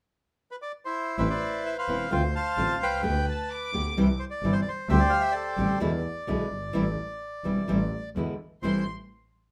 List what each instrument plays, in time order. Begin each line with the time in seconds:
0.51 bandoneon B4
0.62 bandoneon D5
0.85 bandoneon E4 C5
1.18 double bass A1, nylon-string guitar E3 B3 C4 E4, bandoneon B4 C5 E5
1.30 bandoneon B4 D5
1.66 bandoneon E5
1.78 bandoneon B4 C5 F5
1.88 double bass E1, nylon-string guitar E3 B3 C4 E4
2.11 double bass D2, nylon-string guitar D3 A3 C4 F4, bandoneon C5 G5
2.35 bandoneon C5 F5 A5
2.57 double bass A1, nylon-string guitar D3 A3 C4 F4
2.81 double bass C2, bandoneon B4 G5
3.03 double bass D2, nylon-string guitar D3 A3 B3 G4
3.27 violin section A5
3.49 violin section D6
3.72 double bass D2, nylon-string guitar D3 A3 B3 G4
3.96 double bass C2, nylon-string guitar C3 E3 G3 C4 E4
4.20 bandoneon C5
4.30 bandoneon D5
4.42 double bass G1, nylon-string guitar C3 E3 G3 C4 E4
4.53 bandoneon C5
4.62 bandoneon D5
4.68 bandoneon C5
4.89 double bass D2, nylon-string guitar D3 G3 C4 G4, bandoneon G4 C5 E5
4.99 bandoneon D5
5.10 bandoneon F5
5.21 bandoneon E5
5.32 bandoneon A4 D5
5.36 bandoneon G4
5.57 double bass A1, nylon-string guitar D3 G3 C4 G4
5.80 double bass E2, nylon-string guitar B2 D3 G#3 B3 E4
6.27 double bass B1, nylon-string guitar B2 D3 G#3 B3 E4
6.52 double bass G1
6.73 double bass A1, nylon-string guitar E3 G3 C4 E4
7.44 double bass E1, nylon-string guitar E3 G3 C4 E4
7.68 double bass A1, nylon-string guitar E3 G3 C4 E4
8.16 double bass E2, nylon-string guitar B2 D3 G#3 B3 E4
8.62 double bass A1, nylon-string guitar A2 E3 G3 C4 E4, bandoneon C5, violin section C6